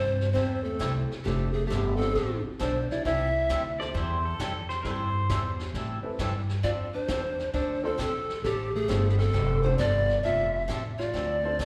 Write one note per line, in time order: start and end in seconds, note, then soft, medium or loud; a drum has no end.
0.00 0.34 G2 loud
0.00 0.31 C4 medium
0.00 0.31 C5 loud
0.21 snare soft
0.33 0.79 E2 medium
0.33 0.58 C3 medium
0.33 0.58 E3 medium
0.33 0.58 G3 medium
0.33 0.65 C4 medium
0.33 0.58 C4 medium
0.33 0.58 E4 medium
0.33 0.58 A4 medium
0.33 0.66 C5 medium
0.33 brush sweep soft
0.33 kick soft
0.33 snare soft
0.64 1.10 A3 medium
0.64 1.10 A4 medium
0.79 1.08 C2 medium
0.79 0.92 C3 medium
0.79 0.92 E3 medium
0.79 0.92 G3 medium
0.79 0.92 C4 medium
0.79 1.07 C4 medium
0.79 1.07 E4 medium
0.79 0.92 E4 medium
0.79 1.08 G4 medium
0.79 0.92 A4 medium
0.79 1.08 A4 medium
0.79 1.08 C5 medium
0.79 kick soft
0.79 snare medium
0.79 hi-hat pedal medium
1.10 muted upright bass stroke soft
1.10 snare soft
1.24 1.69 F1 medium
1.24 1.48 F3 medium
1.24 1.54 A3 medium
1.24 1.48 C4 soft
1.24 1.52 C4 medium
1.24 1.52 D4 medium
1.24 1.48 D4 medium
1.24 1.53 F4 medium
1.24 1.54 G4 medium
1.24 1.48 A4 medium
1.24 1.53 A4 medium
1.24 1.53 C5 medium
1.24 brush sweep soft
1.24 kick soft
1.24 snare soft
1.52 1.66 A3 medium
1.52 1.66 G#4 loud
1.67 2.14 G1 medium
1.67 1.82 F3 medium
1.67 1.97 A3 medium
1.67 1.82 C4 medium
1.67 1.82 D4 medium
1.67 1.96 G4 medium
1.67 1.82 A4 medium
1.67 kick soft
1.71 snare medium
1.71 hi-hat pedal medium
1.96 2.41 C4 medium
1.96 2.13 C4 medium
1.96 2.13 D4 medium
1.96 2.40 A4 loud
2.01 2.14 F4 medium
2.01 2.14 A4 medium
2.01 2.14 C5 medium
2.01 snare soft
2.15 2.43 A1 loud
2.15 2.38 F3 medium
2.15 2.38 C4 medium
2.15 2.38 D4 medium
2.15 2.38 A4 medium
2.15 brush sweep medium
2.15 kick soft
2.15 snare soft
2.45 muted upright bass stroke soft
2.59 2.88 B1 medium
2.59 2.72 F3 medium
2.59 2.72 C4 medium
2.59 2.72 D4 medium
2.59 2.90 D4 medium
2.59 2.72 A4 medium
2.59 2.88 C5 medium
2.59 kick soft
2.59 snare medium
2.59 hi-hat pedal medium
2.90 3.05 E4 medium
2.90 3.06 D5 medium
2.90 muted upright bass stroke soft
2.90 snare soft
3.04 3.49 C2 medium
3.04 3.28 C3 medium
3.04 3.28 E3 medium
3.04 3.28 G3 medium
3.04 3.31 C4 medium
3.04 3.28 C4 soft
3.04 3.32 E4 medium
3.04 3.28 E4 medium
3.04 3.81 E4 medium
3.04 3.32 G4 medium
3.04 3.32 A4 medium
3.04 3.28 A4 medium
3.04 3.32 C5 medium
3.04 3.80 E5 loud
3.04 brush sweep medium
3.04 kick soft
3.04 snare medium
3.49 3.93 D2 medium
3.49 3.62 C3 medium
3.49 3.62 E3 medium
3.49 3.62 G3 medium
3.49 3.62 C4 medium
3.49 3.62 E4 medium
3.49 3.62 A4 medium
3.49 kick soft
3.49 snare medium
3.49 hi-hat pedal medium
3.79 3.93 C4 medium
3.79 3.93 E4 medium
3.79 3.93 G4 medium
3.79 3.93 A4 medium
3.79 3.93 C5 medium
3.79 3.94 D5 medium
3.79 snare soft
3.94 4.38 E2 loud
3.94 4.17 C3 medium
3.94 4.17 E3 medium
3.94 4.17 G3 medium
3.94 4.17 C4 medium
3.94 4.18 E4 medium
3.94 4.18 A4 medium
3.94 4.24 C5 medium
3.94 brush sweep soft
3.94 kick soft
3.94 snare soft
4.25 4.69 A4 medium
4.39 4.83 F2 medium
4.39 4.52 C3 medium
4.39 4.52 E3 medium
4.39 4.52 G3 medium
4.39 4.52 C4 medium
4.39 4.52 E4 medium
4.39 4.52 A4 medium
4.39 kick soft
4.39 snare medium
4.39 hi-hat pedal medium
4.69 4.82 C5 medium
4.69 snare soft
4.83 5.28 G2 medium
4.83 5.07 C3 soft
4.83 5.08 E3 medium
4.83 5.08 G3 soft
4.83 5.11 C4 medium
4.83 5.08 C4 soft
4.83 5.11 E4 medium
4.83 5.08 E4 medium
4.83 5.11 G4 medium
4.83 5.12 A4 soft
4.83 5.08 A4 medium
4.83 5.71 C5 loud
4.83 5.12 C5 medium
4.83 brush sweep soft
4.83 kick soft
4.83 snare medium
5.29 5.73 E2 loud
5.29 5.41 C3 medium
5.29 5.42 E3 medium
5.29 5.42 G3 medium
5.29 5.42 C4 medium
5.29 5.42 E4 medium
5.29 5.42 A4 medium
5.29 kick soft
5.29 snare medium
5.29 hi-hat pedal medium
5.59 snare soft
5.74 6.02 A2 medium
5.74 5.97 C3 medium
5.74 5.97 E3 medium
5.74 5.98 G3 medium
5.74 5.98 C4 medium
5.74 5.98 E4 medium
5.74 5.98 A4 medium
5.74 brush sweep medium
5.74 kick soft
5.74 snare soft
6.03 6.17 C4 medium
6.03 6.17 E4 medium
6.03 6.17 G4 medium
6.03 6.18 A4 medium
6.03 6.18 B4 medium
6.03 muted upright bass stroke soft
6.19 6.63 G2 medium
6.19 6.31 C3 medium
6.19 6.31 E3 medium
6.19 6.32 G3 medium
6.19 6.32 C4 medium
6.19 6.32 E4 medium
6.19 6.32 A4 medium
6.19 kick soft
6.19 snare medium
6.19 hi-hat pedal medium
6.49 snare soft
6.63 7.07 F2 medium
6.63 6.87 F3 soft
6.63 6.87 C4 medium
6.63 6.87 D4 medium
6.63 6.72 F4 medium
6.63 6.87 A4 medium
6.63 6.70 D5 medium
6.63 brush sweep medium
6.63 kick soft
6.63 snare soft
6.94 7.50 D4 medium
6.94 7.50 C5 loud
7.08 7.53 E2 medium
7.08 7.21 F3 medium
7.08 7.21 C4 medium
7.08 7.21 D4 medium
7.08 7.21 A4 medium
7.08 kick soft
7.08 snare medium
7.08 hi-hat pedal medium
7.39 snare soft
7.54 7.98 D2 medium
7.54 7.77 F3 soft
7.54 7.77 C4 medium
7.54 7.77 D4 medium
7.54 7.86 D4 medium
7.54 7.77 A4 medium
7.54 7.86 C5 medium
7.54 brush sweep soft
7.54 kick soft
7.54 snare soft
7.83 7.97 C4 medium
7.83 8.46 C4 medium
7.83 7.97 D4 medium
7.83 7.97 F4 medium
7.83 7.98 A4 medium
7.83 8.47 A4 loud
7.83 7.98 C5 loud
7.98 8.43 A#1 medium
7.98 8.10 F3 medium
7.98 8.11 C4 medium
7.98 8.11 D4 medium
7.98 8.11 A4 medium
7.98 kick soft
7.98 snare medium
7.98 hi-hat pedal medium
8.30 snare soft
8.44 8.88 A1 medium
8.44 8.67 F3 medium
8.44 8.75 A3 medium
8.44 8.67 C4 medium
8.44 8.67 D4 soft
8.44 8.77 G4 medium
8.44 8.68 A4 medium
8.44 brush sweep soft
8.44 kick soft
8.44 snare medium
8.75 9.10 A3 medium
8.75 9.10 G#4 loud
8.88 9.33 G1 loud
8.88 9.01 F3 medium
8.88 9.16 C4 medium
8.88 9.01 C4 medium
8.88 9.16 D4 medium
8.88 9.01 D4 medium
8.88 9.17 F4 medium
8.88 9.01 A4 medium
8.88 9.17 A4 medium
8.88 9.17 C5 medium
8.88 kick soft
8.88 snare medium
8.88 hi-hat pedal medium
9.10 9.19 B3 medium
9.10 9.20 G#4 medium
9.18 9.66 C4 medium
9.18 9.64 A4 loud
9.18 snare soft
9.33 9.78 F1 loud
9.33 9.57 F3 medium
9.33 9.57 C4 medium
9.33 9.57 D4 medium
9.33 9.57 A4 medium
9.33 brush sweep medium
9.33 kick soft
9.33 snare soft
9.63 9.77 C4 medium
9.63 9.77 D4 medium
9.63 9.81 D4 medium
9.63 9.78 F4 medium
9.63 9.78 A4 medium
9.63 9.80 C5 loud
9.63 9.78 C5 medium
9.78 10.23 G1 loud
9.78 9.91 F3 medium
9.78 9.91 C4 medium
9.78 9.91 D4 medium
9.78 10.24 F4 medium
9.78 9.91 A4 medium
9.78 10.23 D5 loud
9.78 kick soft
9.78 snare medium
9.78 hi-hat pedal medium
10.09 snare soft
10.23 10.68 F1 medium
10.23 10.46 F3 soft
10.23 10.47 C4 soft
10.23 10.47 D4 medium
10.23 10.64 F4 medium
10.23 10.47 A4 soft
10.23 10.63 E5 loud
10.23 brush sweep soft
10.23 kick soft
10.23 snare soft
10.68 11.13 A1 medium
10.68 10.81 F3 medium
10.68 10.81 C4 medium
10.68 10.81 D4 medium
10.68 10.81 A4 medium
10.68 kick soft
10.68 snare medium
10.68 hi-hat pedal medium
10.98 11.65 F4 medium
10.98 11.65 D5 loud
10.98 snare soft
11.14 11.58 D2 loud
11.14 11.37 F3 medium
11.14 11.37 C4 medium
11.14 11.37 D4 medium
11.14 11.37 A4 medium
11.14 brush sweep soft
11.14 kick soft
11.14 snare soft
11.43 11.57 C4 medium
11.43 11.57 D4 medium
11.43 11.58 F4 medium
11.43 11.58 A4 medium
11.43 11.58 C5 loud
11.59 11.65 B1 medium
11.59 11.65 F3 medium
11.59 11.65 C4 medium
11.59 11.65 D4 medium
11.59 11.65 A4 medium
11.59 kick soft
11.59 snare medium
11.59 hi-hat pedal medium